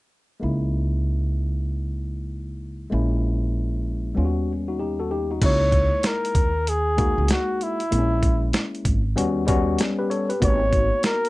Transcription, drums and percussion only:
5.42 kick, closed hi-hat, crash
5.72 kick, closed hi-hat
6.03 snare, closed hi-hat
6.25 closed hi-hat
6.35 kick, closed hi-hat
6.67 closed hi-hat
6.98 kick, closed hi-hat
7.28 snare, closed hi-hat
7.61 closed hi-hat
7.80 closed hi-hat
7.92 closed hi-hat
8.23 kick, closed hi-hat
8.53 snare, closed hi-hat
8.75 closed hi-hat
8.85 kick, closed hi-hat
9.18 closed hi-hat
9.48 kick, closed hi-hat
9.79 snare, closed hi-hat
10.11 closed hi-hat
10.30 closed hi-hat
10.42 kick, closed hi-hat
10.73 kick, closed hi-hat
11.03 snare, closed hi-hat
11.25 closed hi-hat

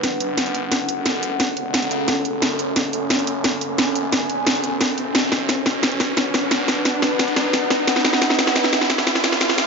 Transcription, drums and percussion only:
0.03 snare, closed hi-hat
0.20 closed hi-hat
0.38 snare, closed hi-hat
0.46 closed hi-hat
0.55 closed hi-hat
0.72 snare, closed hi-hat
0.89 closed hi-hat
1.06 snare, closed hi-hat
1.23 closed hi-hat
1.40 snare, closed hi-hat
1.57 closed hi-hat
1.74 snare, closed hi-hat
1.82 closed hi-hat
1.91 closed hi-hat
2.08 snare, closed hi-hat
2.25 closed hi-hat
2.42 snare, closed hi-hat
2.59 closed hi-hat
2.76 snare, closed hi-hat
2.93 closed hi-hat
3.10 snare, closed hi-hat
3.19 closed hi-hat
3.27 closed hi-hat
3.44 snare, closed hi-hat
3.61 closed hi-hat
3.78 snare, closed hi-hat
3.95 closed hi-hat
4.12 snare, closed hi-hat
4.30 closed hi-hat
4.47 snare, closed hi-hat
4.55 closed hi-hat
4.64 closed hi-hat
4.81 snare, closed hi-hat
4.98 closed hi-hat
5.15 snare, closed hi-hat
5.32 snare, closed hi-hat
5.49 snare, closed hi-hat
5.66 snare, closed hi-hat
5.83 snare, closed hi-hat
5.91 closed hi-hat
6.00 snare, closed hi-hat
6.17 snare, closed hi-hat
6.34 snare, closed hi-hat
6.51 snare, closed hi-hat
6.68 snare, closed hi-hat
6.85 snare, closed hi-hat
7.02 snare, closed hi-hat
7.19 snare, closed hi-hat
7.28 closed hi-hat
7.36 snare, closed hi-hat
7.53 snare, closed hi-hat
7.70 snare, closed hi-hat
7.88 snare, closed hi-hat
7.96 snare
8.05 snare, closed hi-hat
8.13 snare
8.22 snare, closed hi-hat
8.30 snare
8.39 snare, closed hi-hat
8.47 snare
8.56 snare, closed hi-hat
8.64 snare, closed hi-hat
8.73 snare, closed hi-hat
8.81 snare
8.90 snare, closed hi-hat
8.98 snare
9.07 snare, closed hi-hat
9.15 snare
9.24 snare, closed hi-hat
9.32 snare, closed hi-hat
9.41 snare, closed hi-hat
9.49 snare
9.58 snare, closed hi-hat

